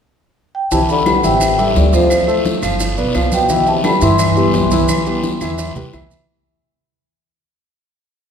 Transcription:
0.55 G5
0.71 C2 C3 E3 E4 E5 A5, high bongo, high conga, long guiro, maracas
0.89 D3 B5, high conga, maracas
1.06 G3 G4 B4, high bongo, high conga, short guiro, claves, maracas
1.17 A2 F#5
1.23 A1 C3 E3 E4 E5 G5, high conga, short guiro, maracas
1.41 high bongo, high conga, long guiro, claves, maracas
1.58 G2 G3 G4 A4 E5, high conga, maracas
1.75 D2 G2 D5, high bongo, low bongo, high conga, short guiro, maracas
1.93 F2 F3 F4 C5 F5, high conga, short guiro, maracas
2.10 high bongo, high conga, long guiro, claves, maracas
2.27 A3 A4 C5, high bongo, high conga, maracas
2.45 high bongo, high conga, short guiro, maracas
2.62 G1 F3 F4 F5, high bongo, high conga, short guiro, claves, maracas
2.80 high bongo, high conga, long guiro, maracas
2.97 B1 B3 B4 D5, high bongo, high conga, maracas
3.14 C2 F3 F4 F5, high bongo, low bongo, high conga, short guiro, claves, maracas
3.32 B2 G5, high conga, short guiro, maracas
3.49 E3 E4 E5, high bongo, high conga, long guiro, maracas
3.67 C3 A5, high conga, maracas
3.84 D3 G3 G4 B4 B5, high bongo, high conga, short guiro, claves, maracas
4.01 G2 E3 E4 E5 C6, high conga, short guiro, maracas
4.19 high bongo, high conga, long guiro, claves, maracas
4.36 G3 B3 G4, high conga, maracas
4.53 C2, high bongo, low bongo, high conga, short guiro, maracas
4.71 E3 E4 E5, high conga, short guiro, maracas
4.88 high bongo, high conga, long guiro, claves, maracas
5.06 G3 B3 G4, high bongo, high conga, maracas
5.23 high bongo, high conga, short guiro, maracas
5.41 E2 E3 E4 E5, high bongo, short guiro, claves, maracas
5.58 high bongo, long guiro, maracas
5.76 D2 G3 G4 B4, high bongo, low conga, maracas
5.93 C2 E3 E4 E5, high bongo, low bongo, short guiro, claves, maracas
6.11 low conga, short guiro, maracas

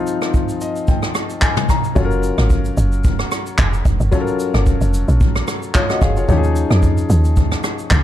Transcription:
Already playing: F3 C4 D#4 F4
0.07 shaker
0.22 cross-stick, shaker
0.34 kick, shaker
0.49 shaker
0.61 D#5, shaker
0.76 shaker
0.88 G5, kick, shaker
1.03 cross-stick, shaker
1.15 cross-stick, shaker
1.30 shaker
1.42 G#5, kick, clap, shaker
1.57 cross-stick, mid tom, shaker
1.69 A#5, kick, cross-stick, shaker
1.84 shaker
1.95 F#1 F#3 C#4 F4 A4, kick, shaker
2.05 A#4
2.11 shaker
2.23 shaker
2.38 G#1, cross-stick, shaker
2.50 kick, shaker
2.65 shaker
2.77 F#1, shaker
2.92 shaker
3.04 kick, shaker
3.19 cross-stick, shaker
3.32 cross-stick, shaker
3.46 shaker
3.58 F1, kick, clap, shaker
3.73 shaker
3.85 F1, kick, shaker
4.00 F#1, shaker
4.11 F#3 C#4 F4 A4, kick, shaker
4.21 A#4
4.27 shaker
4.40 shaker
4.54 F#1, cross-stick, shaker
4.66 kick, shaker
4.81 F1, shaker
4.94 shaker
5.08 A#1, shaker
5.21 kick, shaker
5.36 cross-stick, shaker
5.48 cross-stick, shaker
5.63 shaker
5.75 F4 C#5, kick, clap, shaker
5.90 F#4 D#5, cross-stick, shaker
6.02 F#1 G#4 F5, kick, cross-stick, shaker
6.17 F4 C#5, shaker
6.28 D#2 F3 C#4 D#4 G4, kick, shaker
6.37 G#4
6.44 shaker
6.56 shaker
6.70 F2, cross-stick, shaker
6.83 kick, shaker
6.98 shaker
7.10 D#2, shaker
7.25 shaker
7.37 kick, shaker
7.52 cross-stick, shaker
7.64 cross-stick, shaker
7.79 shaker
7.90 C#2, kick, clap, shaker

